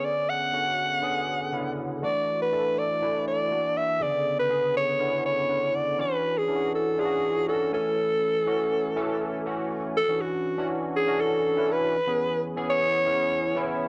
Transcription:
<<
  \new Staff \with { instrumentName = "Alto saxophone" } { \time 4/4 \key d \lydian \tempo 4 = 121 d''8 fis''2. r8 | d''8. b'8. d''4 d''4 e''8 | d''8. b'8. cis''4 cis''4 d''8 | b'8. gis'8. a'8 gis'4 a'8 a'8~ |
a'2. r4 | a'8 fis'4 r8 gis'8 a'4 b'8~ | b'4 r8 cis''2 r8 | }
  \new Staff \with { instrumentName = "Tine electric piano" } { \time 4/4 \key d \lydian <d b cis' gis'>8. r16 <d b cis' fis'>4 <d b cis' gis'>4 <cis d b cis' e'>4 | <e a d' fis'>4 <e a d' a'>4 <e a d' e'>4 <e ais d' fis'>4 | <cis d b gis'>4 <d b cis' gis'>4 <d b cis' e'>4 <d b cis' b'>4 | <e cis' d' fis'>4 <e cis' d' e' fis'>4 <e cis' d' eis' fis'>4 <e cis' d' fis'>8 <e a cis' gis''>8~ |
<e a cis' gis''>8. r16 <e a cis' fis'>4 <e a cis' a'>4 <e a cis' fis'>4 | r16 <e cis' d' fis'>4 <e cis' d' fis'>4 <e cis' d' fis'>4 <e cis' d' e'>8. | r16 <e b cis' gis'>4 <e b cis' gis'>4 <e b cis' e'>4 <e b cis' e'>8. | }
>>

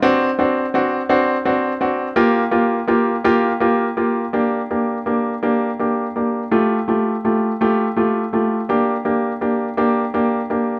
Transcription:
\new Staff \with { instrumentName = "Grand piano" } { \time 6/8 \key g \minor \tempo 4. = 55 <c' d' fis'>8 <c' d' fis'>8 <c' d' fis'>8 <c' d' fis'>8 <c' d' fis'>8 <c' d' fis'>8 | <bes f' g'>8 <bes f' g'>8 <bes f' g'>8 <bes f' g'>8 <bes f' g'>8 <bes f' g'>8 | <bes d' g'>8 <bes d' g'>8 <bes d' g'>8 <bes d' g'>8 <bes d' g'>8 <bes d' g'>8 | <a f' g'>8 <a f' g'>8 <a f' g'>8 <a f' g'>8 <a f' g'>8 <a f' g'>8 |
<bes d' g'>8 <bes d' g'>8 <bes d' g'>8 <bes d' g'>8 <bes d' g'>8 <bes d' g'>8 | }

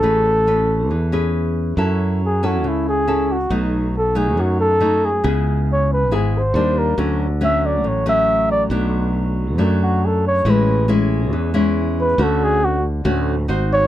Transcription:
<<
  \new Staff \with { instrumentName = "Flugelhorn" } { \time 4/4 \key d \lydian \tempo 4 = 138 a'2. r4 | r4 gis'8 fis'8 e'8 gis'4 fis'8 | r4 a'8 gis'8 fis'8 a'4 gis'8 | r4 cis''8 b'8 gis'8 c''4 ais'8 |
r4 e''8 d''8 cis''8 e''4 d''8 | r2 r8 fis'8 a'8 cis''8 | b'4 r2 r8 b'8 | a'8 gis'8 fis'8 r2 cis''8 | }
  \new Staff \with { instrumentName = "Nylon-string guitar" } { \time 4/4 \key d \lydian << { <cis' gis' b'>8 r8 <cis' b'>4 r8 <cis' gis' b'>4. | <cis' e' a'>4 r8 <cis' e' a'>4. <cis' e' a'>8 r8 | <fis a dis'>4 r8 <fis a dis'>4. <fis a dis'>8 r8 | <b e' gis'>2 <b e' gis'>8 r8 <g ais d'>4 |
<fis a cis'>8 r8 <fis a cis'>4. <fis a cis'>4. | <fis a d'>2 <fis a d'>2 | <gis cis' e'>4 <gis cis' e'>4. <gis cis' e'>4. | <a cis' fis'>4. r8 <a cis' fis'>8 r8 <dis' fis' bis'>4 | } \\ { a2 e2 | fis2 cis2 | b,2 fis,2 | cis2 gis,4 r4 |
d2 a,2 | b,2 fis,2 | a,2 e2 | d2 a,4 r4 | } >> }
  \new Staff \with { instrumentName = "Fretless electric bass" } { \clef bass \time 4/4 \key d \lydian a,,2 e,2 | fis,2 cis,2 | b,,2 fis,2 | cis,2 gis,,4 dis,4 |
d,2 a,,2 | b,,2 fis,2 | a,,2 e,2 | d,2 d,4 gis,,4 | }
>>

